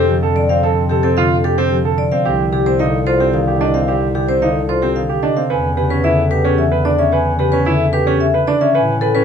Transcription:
Already playing: bass clarinet F2, harp C3 D3 C4, grand piano C4, vibraphone G4
0.09 harp F3
0.23 grand piano A4
0.36 vibraphone D5
0.49 grand piano C4, vibraphone F5
0.63 harp C4, grand piano A4
0.90 harp C3, vibraphone G4, grand piano A4
1.03 grand piano C4, vibraphone A4
1.17 harp D3, grand piano F4, vibraphone F5
1.44 grand piano G4, vibraphone A4
1.58 grand piano C4, vibraphone G4
1.71 harp F3
1.85 grand piano A4
1.98 vibraphone D5
2.12 grand piano C4, vibraphone F5
2.25 bass clarinet C2, harp C4, grand piano G4
2.53 harp C3, vibraphone G4, grand piano G4
2.66 grand piano C4, vibraphone C5
2.79 harp D3, grand piano D#4, vibraphone F5
3.07 grand piano F4, vibraphone C5
3.20 grand piano C4, vibraphone G4
3.34 harp D#3, vibraphone F5
3.48 grand piano G4
3.61 grand piano D4, vibraphone D#5
3.74 grand piano C4, vibraphone F5
3.88 harp C4, grand piano G4
4.14 harp C3, grand piano G4, vibraphone G4
4.29 grand piano C4, vibraphone C5
4.42 harp D3, grand piano D#4, vibraphone F5
4.69 grand piano F4, vibraphone C5
4.82 grand piano C4, vibraphone G4
4.96 harp D#3, vibraphone F5
5.09 grand piano G4
5.23 grand piano D4, vibraphone D#5
5.37 grand piano C4, vibraphone F5
5.50 bass clarinet E2, harp C#4, grand piano B4
5.77 harp C#3, vibraphone G4, grand piano B4
5.90 grand piano C#4, vibraphone B4
6.04 harp D3, grand piano E4, vibraphone E5
6.31 grand piano G4, vibraphone B4
6.45 grand piano C#4, vibraphone G4
6.58 harp E3, vibraphone E5
6.72 grand piano B4
6.85 grand piano D4, vibraphone D5
6.99 grand piano C#4, vibraphone E5
7.12 harp C#4, grand piano B4
7.39 harp C#3, vibraphone G4, grand piano B4
7.52 grand piano C#4, vibraphone B4
7.66 harp D3, grand piano E4, vibraphone E5
7.93 grand piano G4, vibraphone B4
8.07 grand piano C#4, vibraphone G4
8.20 harp E3, vibraphone E5
8.34 grand piano B4
8.47 grand piano D4, vibraphone D5
8.61 grand piano C#4, vibraphone E5
8.74 bass clarinet A2, harp C#4, grand piano B4
9.01 harp C#3, vibraphone A4, grand piano B4
9.15 grand piano C#4, vibraphone B4

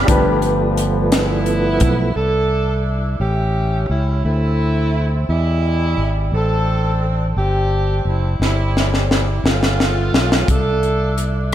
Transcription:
Already playing: grand piano G3 D4 F4 G4
0.05 fingered electric bass G1, grand piano G2 F3 D4 G4, french horn section F3 G3 B3 D4, tonewheel organ F3 A3 B3, kick, closed hi-hat
0.11 grand piano B4
0.42 closed hi-hat
0.77 closed hi-hat
1.12 saxophone section B3 E4, snare, closed hi-hat
1.46 closed hi-hat
1.80 fingered electric bass B1, kick, closed hi-hat
2.16 fingered electric bass C2, saxophone section D4 E4 A4
3.20 fingered electric bass A1, saxophone section C#4 E4 G4
3.89 fingered electric bass C#2, saxophone section E4
4.25 fingered electric bass D2, saxophone section A3 C4 E4
5.29 fingered electric bass E2, saxophone section G3 G#3 E4
5.98 fingered electric bass G#1
6.32 fingered electric bass A1, saxophone section C4 D4 A4
7.36 fingered electric bass G1, saxophone section C4 D4 G4
8.05 fingered electric bass F#1, saxophone section E4
8.39 fingered electric bass G1, saxophone section G3 C4 E4, snare
8.77 snare
8.94 snare
9.11 saxophone section E4, snare
9.44 fingered electric bass G1, saxophone section A3 B3 F4, snare
9.63 snare
9.80 snare
10.12 fingered electric bass B1, snare
10.32 snare
10.48 fingered electric bass C2, saxophone section D4 E4 A4, kick, closed hi-hat
10.83 closed hi-hat
11.18 closed hi-hat

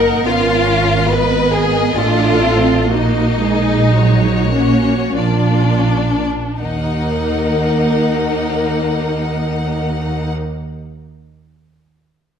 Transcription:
Already playing: double bass section F#1, cello section A#3, viola section D#4 A#4, violin section A#4 F#5
0.24 double bass section G#1, cello section B3, viola section C#4, violin section F4 F5
0.66 cello section C#4
1.08 cello section B3, viola section B3, violin section B4 D#5
1.52 violin section G#4
1.97 double bass section A1, viola section A3 A4, cello section D4, violin section F4
2.42 cello section C4, viola section C4
2.90 double bass section A#1, viola section A#3 F#4, cello section A#3, violin section D#4 D#5
3.40 cello section G#3, viola section G#4
3.95 cello section F#3, viola section G#3 F#4, violin section C#5
4.52 viola section A#3, cello section A#3, violin section C#4
5.15 double bass section A#1, cello section F3, viola section A#3 F4, violin section D4 D5
6.60 cello section D#2, double bass section D#2, viola section A#3 A#4, violin section D#4 F#5

